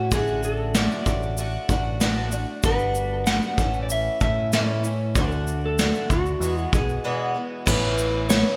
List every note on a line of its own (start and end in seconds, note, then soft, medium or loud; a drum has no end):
0.00 0.13 A2 loud
0.00 0.11 A3 soft
0.00 0.12 C#4 soft
0.00 0.11 E4 medium
0.00 0.13 F#4 medium
0.11 0.87 A1 medium
0.11 0.73 A2 medium
0.11 0.74 D3 medium
0.11 0.74 A3 medium
0.11 0.75 D4 medium
0.11 0.75 F#4 medium
0.11 0.44 G#4 medium
0.11 kick loud
0.11 shaker medium
0.27 shaker soft
0.43 0.73 A4 medium
0.43 shaker medium
0.74 1.37 A2 medium
0.74 1.37 D3 medium
0.74 1.38 A3 medium
0.74 1.38 D4 medium
0.74 1.38 F#4 medium
0.74 1.66 D5 medium
0.74 snare loud
0.74 open hi-hat soft
0.74 shaker medium
0.91 shaker soft
1.06 1.56 A1 medium
1.06 kick medium
1.06 snare soft
1.06 shaker medium
1.23 shaker soft
1.37 1.69 D3 medium
1.37 1.70 A3 medium
1.37 1.69 D4 medium
1.37 1.68 F#4 medium
1.37 open hi-hat soft
1.37 shaker medium
1.69 2.44 A1 medium
1.69 2.00 A3 soft
1.69 2.00 D4 medium
1.69 2.00 F#4 medium
1.69 kick medium
1.69 shaker medium
2.00 2.32 A2 medium
2.00 2.32 D3 medium
2.00 2.32 A3 medium
2.00 2.32 D4 loud
2.00 2.30 F#4 loud
2.00 snare medium
2.00 open hi-hat soft
2.00 shaker medium
2.32 2.63 A3 soft
2.32 2.63 D4 medium
2.32 2.63 F#4 medium
2.32 shaker medium
2.63 3.39 G1 medium
2.63 3.26 G3 medium
2.63 3.26 B3 medium
2.63 3.27 D4 medium
2.63 3.27 F#4 medium
2.63 3.26 B4 medium
2.63 kick loud
2.63 open hi-hat soft
2.63 shaker medium
2.79 shaker soft
2.95 shaker medium
3.26 3.58 G3 medium
3.26 3.58 B3 medium
3.26 3.59 D4 medium
3.26 3.58 F#4 medium
3.26 3.79 F#5 loud
3.26 snare loud
3.26 open hi-hat medium
3.26 shaker medium
3.42 shaker soft
3.58 4.08 A1 medium
3.58 4.22 A2 soft
3.58 4.22 E3 medium
3.58 4.21 A3 medium
3.58 4.21 C#4 medium
3.58 4.19 E4 medium
3.58 kick medium
3.58 shaker medium
3.74 shaker soft
3.83 3.89 D5 medium
3.90 4.20 E5 loud
3.90 open hi-hat medium
3.90 shaker medium
4.21 5.17 A2 loud
4.21 4.52 A3 soft
4.21 4.52 C#4 medium
4.21 4.52 E4 medium
4.21 4.54 E5 medium
4.21 kick medium
4.21 shaker medium
4.53 4.84 A2 medium
4.53 4.84 E3 medium
4.53 4.84 A3 medium
4.53 4.83 C#4 medium
4.53 4.82 E4 medium
4.53 5.18 C#5 medium
4.53 snare loud
4.53 open hi-hat soft
4.53 shaker medium
4.83 5.15 A3 soft
4.83 5.16 C#4 soft
4.83 5.15 E4 soft
4.83 shaker medium
5.15 5.90 D2 medium
5.15 5.77 D3 medium
5.15 5.78 A3 medium
5.15 5.79 D4 medium
5.15 5.79 F#4 medium
5.15 5.60 A4 medium
5.15 kick loud
5.15 open hi-hat soft
5.15 shaker medium
5.31 shaker soft
5.47 shaker medium
5.66 6.12 A4 medium
5.78 6.41 D3 medium
5.78 6.41 A3 medium
5.78 6.41 D4 medium
5.78 6.42 F#4 medium
5.78 snare loud
5.78 open hi-hat medium
5.78 shaker medium
5.95 shaker soft
6.10 6.35 D2 medium
6.10 6.60 F#4 medium
6.10 kick medium
6.10 snare soft
6.10 shaker medium
6.26 shaker soft
6.40 6.65 E2 medium
6.40 6.72 E3 medium
6.40 6.72 G#3 medium
6.40 6.72 B3 medium
6.40 6.71 F#4 medium
6.40 open hi-hat medium
6.40 shaker medium
6.58 6.75 E4 medium
6.58 shaker soft
6.72 6.97 B1 medium
6.72 7.04 E3 soft
6.72 7.03 G#3 medium
6.72 7.04 B3 medium
6.72 7.04 F#4 medium
6.72 7.32 G#4 medium
6.72 kick medium
6.72 shaker medium
6.89 shaker soft
7.04 7.35 E2 medium
7.04 7.35 B2 medium
7.04 7.36 E3 medium
7.04 7.35 G#3 medium
7.04 7.34 B3 medium
7.04 7.33 F#4 medium
7.34 7.65 E3 soft
7.34 7.66 G#3 soft
7.34 7.65 B3 soft
7.34 7.66 F#4 soft
7.66 8.42 A1 medium
7.66 8.29 A2 medium
7.66 8.28 E3 medium
7.66 8.28 B3 medium
7.66 8.29 C#4 medium
7.66 8.29 E4 medium
7.66 8.26 B4 loud
7.66 kick loud
7.66 crash loud
7.66 crash medium
7.66 shaker medium
7.98 shaker medium
8.29 8.56 E3 medium
8.29 8.56 B3 medium
8.29 8.56 C#4 medium
8.29 8.56 E4 medium
8.29 8.56 C#5 loud
8.29 snare loud
8.29 crash medium
8.29 shaker loud